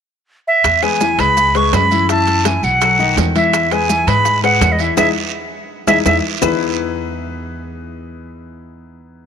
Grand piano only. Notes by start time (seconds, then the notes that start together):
0.83 G#3 G#4 B4
1.00 E3 E4 E5
1.19 G#3 G#4 B4
1.55 G#3 G#4 B4
1.91 E3 E4 E5
2.09 E3 E4 E5
2.45 E3 E4 E5
2.82 F#3 F#4 A4
2.99 D#3 D#4 D#5
3.36 E3 E4 E5
3.72 G#3 G#4 B4
3.90 E3 E4 E5
4.08 G#3 G#4 B4
4.43 G#3 G#4 B4
4.80 E3 E4 E5
4.98 D#4 E4 G#4
5.87 D#4 E4 G#4
6.06 D#4 E4 G#4
6.41 E3 B3 D#4 E4 G#4 B4